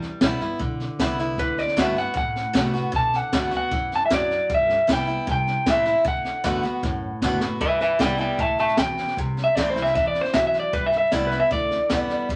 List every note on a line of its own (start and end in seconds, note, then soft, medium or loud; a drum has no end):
0.00 0.20 G3 medium
0.00 snare soft
0.21 0.34 B1 medium
0.21 0.40 G3 medium
0.21 0.40 B3 medium
0.21 0.40 E4 loud
0.21 kick medium
0.21 snare loud
0.21 hi-hat pedal medium
0.40 0.54 G1 medium
0.40 0.61 B3 soft
0.40 0.60 E4 medium
0.40 snare soft
0.59 0.86 B1 medium
0.59 1.34 D3 medium
0.59 kick loud
0.59 snare soft
0.80 snare soft
0.99 1.38 C2 medium
0.99 1.18 G3 medium
0.99 1.18 B3 medium
0.99 1.18 E4 loud
0.99 kick medium
0.99 snare loud
0.99 hi-hat pedal medium
1.19 1.39 B3 soft
1.19 1.38 E4 medium
1.19 snare soft
1.38 1.64 D2 medium
1.38 1.75 D3 medium
1.38 1.59 B4 medium
1.38 kick loud
1.38 snare soft
1.58 1.79 D5 medium
1.58 snare soft
1.68 snare soft
1.77 2.03 G2 medium
1.77 1.96 D3 loud
1.77 1.96 A3 medium
1.77 1.96 B3 loud
1.77 1.95 F#4 loud
1.77 1.98 E5 loud
1.77 kick medium
1.77 snare loud
1.77 hi-hat pedal medium
1.96 2.16 B3 soft
1.96 2.15 F#4 medium
1.96 2.16 F#5 loud
1.96 snare soft
2.14 2.89 A2 medium
2.14 2.42 A2 medium
2.14 2.91 F#5 loud
2.14 kick loud
2.14 snare soft
2.36 snare soft
2.53 2.81 C3 medium
2.53 2.73 D3 medium
2.53 2.73 A3 medium
2.53 2.73 B3 medium
2.53 2.72 F#4 medium
2.53 kick medium
2.53 snare loud
2.53 hi-hat pedal medium
2.74 2.93 B3 medium
2.74 2.93 F#4 medium
2.74 snare soft
2.92 3.20 B2 loud
2.92 3.32 D3 medium
2.92 kick loud
2.92 snare soft
2.96 3.16 A5 loud
3.13 3.54 F#5 loud
3.13 snare soft
3.32 3.46 F#2 medium
3.32 3.52 D3 medium
3.32 3.52 A3 medium
3.32 3.51 B3 medium
3.32 3.50 F#4 medium
3.32 kick medium
3.32 snare loud
3.32 hi-hat pedal medium
3.51 3.66 D2 medium
3.51 3.71 B3 soft
3.51 3.71 F#4 medium
3.51 snare soft
3.57 3.95 F#5 loud
3.71 3.98 F#2 loud
3.71 4.09 E3 medium
3.71 kick loud
3.71 snare soft
3.92 4.05 A5 loud
3.92 snare soft
4.05 4.12 E5 medium
4.10 4.37 F#2 medium
4.10 4.48 F#3 medium
4.10 4.52 D5 loud
4.10 kick medium
4.10 snare loud
4.10 hi-hat pedal medium
4.30 snare soft
4.49 4.76 G1 medium
4.49 4.86 G3 medium
4.49 kick loud
4.49 snare soft
4.54 4.92 E5 medium
4.69 snare soft
4.87 5.15 C2 medium
4.87 5.07 G3 medium
4.87 5.07 B3 loud
4.87 5.06 E4 loud
4.87 kick loud
4.87 snare loud
4.87 hi-hat pedal loud
4.93 5.30 G5 loud
5.07 5.27 B3 soft
5.07 5.26 E4 medium
5.07 snare soft
5.27 5.54 C2 loud
5.27 6.01 C3 medium
5.27 kick loud
5.27 snare soft
5.31 5.70 G5 medium
5.47 snare soft
5.66 5.93 A2 medium
5.66 5.85 E3 medium
5.66 5.86 A3 medium
5.66 5.86 C4 medium
5.66 5.84 E4 loud
5.66 6.07 E5 loud
5.66 kick medium
5.66 snare loud
5.66 hi-hat pedal medium
5.85 6.06 C4 medium
5.85 6.05 E4 medium
5.85 snare soft
6.04 6.31 D2 loud
6.04 6.43 D3 medium
6.04 7.20 F#5 medium
6.04 kick loud
6.04 snare soft
6.25 snare soft
6.44 6.57 F#2 medium
6.44 6.63 D3 medium
6.44 6.63 A3 loud
6.44 6.63 B3 medium
6.44 6.62 F#4 medium
6.44 kick medium
6.44 snare loud
6.44 hi-hat pedal medium
6.63 6.77 D2 medium
6.63 6.83 B3 soft
6.63 6.82 F#4 medium
6.63 snare soft
6.83 7.09 F#2 medium
6.83 7.57 A2 medium
6.83 kick loud
6.83 snare medium
7.22 7.48 F#1 medium
7.22 7.41 D3 medium
7.22 7.41 A3 medium
7.22 7.42 B3 loud
7.22 7.40 F#4 loud
7.22 kick medium
7.22 snare medium
7.22 hi-hat pedal medium
7.41 7.61 B3 medium
7.41 7.60 F#4 medium
7.41 snare loud
7.60 7.87 G1 medium
7.60 7.98 G3 medium
7.60 7.80 B4 medium
7.60 7.80 E5 medium
7.60 kick loud
7.60 snare soft
7.80 7.99 B4 medium
7.80 8.00 E5 medium
7.80 snare soft
7.99 8.26 C2 medium
7.99 8.18 G3 medium
7.99 8.19 B3 medium
7.99 8.17 E4 loud
7.99 8.19 D5 medium
7.99 8.19 G5 medium
7.99 kick medium
7.99 snare loud
7.99 hi-hat pedal medium
8.18 8.39 B3 soft
8.18 8.38 E4 medium
8.18 8.40 D5 medium
8.18 8.41 G5 medium
8.18 snare soft
8.38 8.65 D2 medium
8.38 8.76 A2 medium
8.38 8.58 E5 medium
8.38 8.59 A5 medium
8.38 kick loud
8.38 snare soft
8.58 8.77 E5 medium
8.58 8.78 A5 medium
8.58 snare soft
8.68 snare soft
8.77 9.04 E2 medium
8.77 9.16 B2 medium
8.77 9.16 G5 loud
8.77 kick medium
8.77 snare loud
8.77 hi-hat pedal medium
8.97 snare soft
9.08 snare soft
9.17 9.44 C2 medium
9.17 9.92 C3 medium
9.17 kick loud
9.17 snare soft
9.37 snare soft
9.44 9.55 E5 loud
9.55 9.70 E2 medium
9.55 9.75 E3 medium
9.55 9.76 A3 medium
9.55 9.76 C4 loud
9.55 9.75 E4 loud
9.55 9.69 D5 loud
9.55 kick medium
9.55 snare loud
9.55 hi-hat pedal medium
9.70 9.82 C5 medium
9.76 9.89 C2 medium
9.76 9.95 C4 soft
9.76 9.95 E4 medium
9.76 snare soft
9.82 9.94 E5 medium
9.82 snare soft
9.95 10.22 E2 loud
9.95 10.32 E3 medium
9.95 10.07 E5 medium
9.95 kick loud
9.95 snare soft
10.07 10.21 D5 loud
10.15 snare soft
10.21 10.34 C5 medium
10.21 snare soft
10.33 10.60 E2 medium
10.33 10.71 F#3 medium
10.33 10.46 E5 medium
10.33 kick medium
10.33 snare loud
10.33 hi-hat pedal medium
10.47 10.59 E5 medium
10.53 snare soft
10.59 10.73 D5 medium
10.72 10.99 G1 medium
10.72 11.11 G3 medium
10.72 10.86 B4 medium
10.72 kick loud
10.72 snare soft
10.86 10.97 E5 medium
10.92 snare soft
10.98 11.12 E5 medium
11.12 11.38 C2 medium
11.12 11.31 G3 medium
11.12 11.31 B3 medium
11.12 11.30 E4 loud
11.12 11.25 D5 medium
11.12 kick medium
11.12 snare loud
11.12 hi-hat pedal medium
11.27 11.39 B4 medium
11.31 11.51 B3 soft
11.31 11.50 E4 medium
11.31 snare soft
11.40 11.52 E5 loud
11.51 11.77 D2 loud
11.51 12.25 D3 medium
11.51 12.27 D5 loud
11.51 kick loud
11.51 snare soft
11.71 snare soft
11.90 12.17 E2 medium
11.90 12.27 G3 medium
11.90 12.28 B3 medium
11.90 12.28 E4 medium
11.90 kick medium
11.90 snare loud
11.90 hi-hat pedal medium
12.09 snare soft
12.28 12.36 E2 medium
12.28 12.36 G3 medium
12.28 kick loud
12.28 snare soft